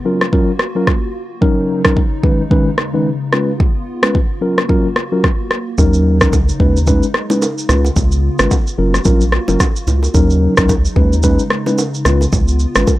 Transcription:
0.05 tine electric piano F#3 C#4 F4 A#4, analog synth pad A#3 F4 F#4
0.21 cross-stick
0.32 tine electric piano F#3 C#4 F4 A#4, kick
0.59 cross-stick
0.76 tine electric piano F#3 C#4 F4 A#4
0.87 kick, cross-stick
1.41 analog synth pad C#3 F#3 D#4, tine electric piano F#3 C#4 D#4 A#4, kick
1.84 tine electric piano F#3 C#4 D#4 A#4, kick, cross-stick
1.97 kick
2.23 analog synth pad D#2 G#3, tine electric piano D#3 G#3 C#4 D#4 B4, kick
2.51 tine electric piano D#3 G#3 C#4 D#4 B4, kick
2.78 cross-stick
2.94 tine electric piano D#3 G#3 C#4 D#4 B4
3.33 tine electric piano G#3 C#4 F4 B4, analog synth pad B3 F4, cross-stick
3.60 kick
4.03 tine electric piano G#3 C#4 F4 B4, cross-stick
4.15 kick
4.41 tine electric piano F#3 C#4 F4 A#4, analog synth pad A#3 F4 F#4
4.58 cross-stick
4.69 tine electric piano F#3 C#4 F4 A#4, kick
4.96 cross-stick
5.12 tine electric piano F#3 C#4 F4 A#4
5.24 kick, cross-stick
5.51 cross-stick
5.78 analog synth bass D#2, analog synth pad C#3 F#3 D#4, tine electric piano F#3 C#4 D#4 A#4, kick, low conga, shaker
5.94 shaker
6.21 analog synth bass C#2, tine electric piano F#3 C#4 D#4 A#4, kick, cross-stick, shaker
6.33 kick, high bongo, shaker
6.49 shaker
6.60 analog synth bass D#2, tine electric piano G#3 C#4 D#4 B4, analog synth pad G#3, kick
6.77 shaker
6.87 tine electric piano G#3 C#4 D#4 B4, kick, low conga, shaker
7.03 shaker
7.14 cross-stick
7.30 tine electric piano G#3 C#4 D#4 B4, low bongo, shaker
7.42 high bongo, shaker
7.58 shaker
7.69 analog synth bass C#2, tine electric piano G#3 C#4 F4 B4, analog synth pad B3 F4, cross-stick, low bongo, low conga, shaker
7.85 high bongo, shaker
7.96 analog synth bass C#2, kick, low conga, shaker
8.12 shaker
8.39 analog synth bass G#1, tine electric piano G#3 C#4 F4 B4, cross-stick, shaker
8.51 kick, high bongo, shaker
8.67 shaker
8.78 analog synth bass F#1, tine electric piano F#3 C#4 F4 A#4, analog synth pad A#3 F4 F#4
8.94 cross-stick, shaker
9.05 analog synth bass A#1, tine electric piano F#3 C#4 F4 A#4, kick, low conga, shaker
9.21 shaker
9.32 cross-stick
9.48 analog synth bass F#1, tine electric piano F#3 C#4 F4 A#4, low bongo, shaker
9.60 kick, cross-stick, high bongo, shaker
9.76 shaker
9.87 analog synth bass C#2, low bongo, low conga, shaker
10.03 high bongo, shaker
10.14 analog synth bass D#2, analog synth pad C#3 F#3 D#4, tine electric piano F#3 C#4 D#4 A#4, kick, low conga, shaker
10.30 shaker
10.57 analog synth bass C#2, tine electric piano F#3 C#4 D#4 A#4, kick, cross-stick, shaker
10.69 kick, high bongo, shaker
10.85 shaker
10.96 analog synth bass D#2, tine electric piano G#3 C#4 D#4 B4, analog synth pad G#3, kick
11.13 shaker
11.23 tine electric piano G#3 C#4 D#4 B4, kick, low conga, shaker
11.39 shaker
11.50 cross-stick
11.66 tine electric piano G#3 C#4 D#4 B4, low bongo, shaker
11.78 high bongo, shaker
11.94 shaker
12.05 analog synth bass C#2, tine electric piano G#3 C#4 F4 B4, analog synth pad B3 F4, cross-stick, low bongo, low conga, shaker
12.21 high bongo, shaker
12.33 analog synth bass C#2, kick, low conga, shaker
12.48 shaker
12.59 shaker
12.75 analog synth bass G#1, tine electric piano G#3 C#4 F4 B4, cross-stick, shaker
12.87 kick, high bongo, shaker

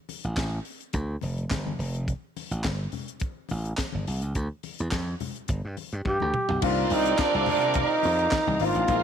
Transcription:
0.09 open hi-hat, muted conga
0.24 slap bass A1, closed hi-hat
0.37 slap bass A1, kick, snare, clap, closed hi-hat, high conga
0.65 open hi-hat
0.80 closed hi-hat
0.93 slap bass D2, kick, closed hi-hat, muted conga
1.21 slap bass F1, open hi-hat, muted conga
1.38 closed hi-hat
1.50 slap bass G1, kick, snare, clap, closed hi-hat, high conga
1.66 high conga
1.79 slap bass F1, open hi-hat
1.94 closed hi-hat
2.08 kick, closed hi-hat, muted conga
2.37 open hi-hat, muted conga
2.51 slap bass A1, closed hi-hat
2.64 slap bass G1, kick, snare, clap, closed hi-hat, high conga
2.92 open hi-hat, low conga
3.08 closed hi-hat
3.20 kick, closed hi-hat, muted conga
3.49 slap bass A1, open hi-hat, muted conga
3.65 closed hi-hat
3.77 kick, snare, clap, closed hi-hat, high conga
3.92 slap bass G1, high conga
4.07 slap bass C2, open hi-hat
4.22 slap bass C#2, closed hi-hat
4.35 slap bass D2, kick, closed hi-hat
4.63 open hi-hat, muted conga
4.79 slap bass E2, closed hi-hat
4.91 slap bass F2, kick, snare, clap, closed hi-hat, high conga
5.20 open hi-hat, low conga
5.36 closed hi-hat
5.48 slap bass G1, kick, closed hi-hat, muted conga
5.65 slap bass G2
5.77 open hi-hat, muted conga
5.92 slap bass G2, closed hi-hat
6.05 slap bass G2, trombone G4, kick, high tom, high conga
6.20 slap bass D2, high conga
6.34 mid tom
6.49 slap bass B1, floor tom
6.61 slap bass C2, grand piano D3 A#3 C4 D4 F4, horn section G3 F4 A#4, violin section C4 D5, trombone F4, string section A#4 F5 A#5 D6, kick, crash
6.68 grand piano D#3
6.90 slap bass C2, trombone D#4, open hi-hat, muted conga
7.05 closed hi-hat
7.18 trombone D4, kick, snare, clap, closed hi-hat, high conga
7.35 slap bass C2
7.46 slap bass C3, open hi-hat, low conga
7.61 closed hi-hat
7.74 kick, closed hi-hat, muted conga, low conga
7.79 trombone D#4
8.03 slap bass F2, open hi-hat, muted conga
8.19 closed hi-hat
8.31 kick, snare, clap, closed hi-hat, high conga
8.47 slap bass C2, high conga
8.60 slap bass G#1, grand piano D#3 A#3 C4 D4 F4, open hi-hat
8.65 trombone F4
8.75 slap bass A1, closed hi-hat
8.88 slap bass A#1, grand piano D#3 G#3 A#3 C4 E4, horn section G#3 F4 C5, violin section F4 F5, string section G#5 C6, kick, closed hi-hat
8.96 grand piano F4

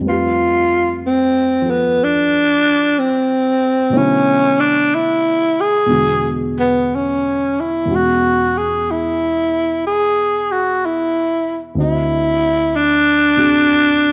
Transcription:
0.00 grand piano F2 G3
0.05 grand piano A3 B4
0.09 tenor saxophone F4, grand piano G4
1.07 tenor saxophone C4
1.62 grand piano F3
1.66 grand piano A4
1.70 tenor saxophone B3
2.04 tenor saxophone D4
2.99 tenor saxophone C4
3.90 grand piano B2 F#3 A3 C#5
3.95 grand piano D3 E4, tenor saxophone C#4
4.60 tenor saxophone D4
4.95 tenor saxophone E4
5.61 tenor saxophone G#4
5.86 grand piano E2 B2 D3 G#3
5.91 grand piano F#4
6.60 tenor saxophone B3
6.95 tenor saxophone C#4
7.60 tenor saxophone E4
7.85 grand piano E2 B2 G#3 C#4
7.90 grand piano F#4
7.96 tenor saxophone F#4
8.57 tenor saxophone G#4
8.91 tenor saxophone E4
9.87 tenor saxophone G#4
10.52 tenor saxophone F#4
10.86 tenor saxophone E4
11.75 grand piano D2 D3 C4 D#5
11.80 tenor saxophone E4, grand piano F#4
12.76 tenor saxophone D4
13.37 grand piano C3 D4 F#4 G#4

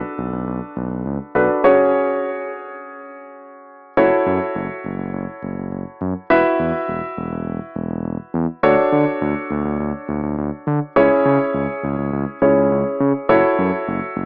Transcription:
Already playing: grand piano D4 F#4 A4 B4
0.18 analog synth bass B1
0.33 analog synth bass B1
0.48 analog synth bass B1
0.77 analog synth bass B1
0.91 analog synth bass B1
1.06 analog synth bass C#2
1.35 analog synth bass B1, grand piano D4 F#4 A4 B4
1.64 grand piano C#4 F#4 G#4 C#5
3.97 analog synth bass F#1, grand piano E4 F#4 A4 C#5
4.26 analog synth bass F#2
4.55 analog synth bass F#1
4.85 analog synth bass F#1
4.99 analog synth bass F#1
5.14 analog synth bass F#1
5.43 analog synth bass F#1
5.57 analog synth bass F#1
5.72 analog synth bass F#1
6.01 analog synth bass F#2
6.30 analog synth bass E1, grand piano E4 F#4 B4 E5
6.59 analog synth bass E2
6.88 analog synth bass E1
7.18 analog synth bass E1
7.32 analog synth bass E1
7.47 analog synth bass E1
7.76 analog synth bass E1
7.90 analog synth bass E1
8.05 analog synth bass E1
8.34 analog synth bass E2
8.63 analog synth bass D2, grand piano D4 F#4 A4 C#5
8.92 analog synth bass D3
9.21 analog synth bass D2
9.51 analog synth bass D2
9.65 analog synth bass D2
9.80 analog synth bass D2
10.09 analog synth bass D2
10.23 analog synth bass D2
10.38 analog synth bass D2
10.67 analog synth bass D3
10.96 analog synth bass C#2, grand piano C#4 E4 G#4 C#5
11.25 analog synth bass C#3
11.54 analog synth bass C#2
11.83 analog synth bass C#2
11.98 analog synth bass C#2
12.13 analog synth bass C#2
12.42 analog synth bass C#2, grand piano C#4 E4 G#4 C#5
12.56 analog synth bass C#2
12.71 analog synth bass C#2
13.00 analog synth bass C#3
13.29 analog synth bass F#1, grand piano E4 F#4 A4 C#5
13.58 analog synth bass F#2
13.87 analog synth bass F#1
14.17 analog synth bass F#1

